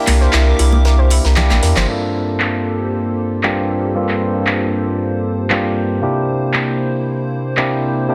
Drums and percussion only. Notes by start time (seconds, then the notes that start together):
0.07 clap, closed hi-hat, open hi-hat, high conga
0.21 snare
0.33 snare, clap, closed hi-hat
0.59 closed hi-hat, open hi-hat
0.73 high conga
0.85 snare, closed hi-hat
1.10 closed hi-hat, open hi-hat
1.25 snare, closed hi-hat
1.36 clap, low conga
1.50 clap, closed hi-hat, high conga
1.63 snare, closed hi-hat, open hi-hat
1.76 snare, clap, closed hi-hat, low conga
2.40 clap
3.43 clap
4.09 clap
4.47 clap
5.50 clap
6.54 clap
7.57 clap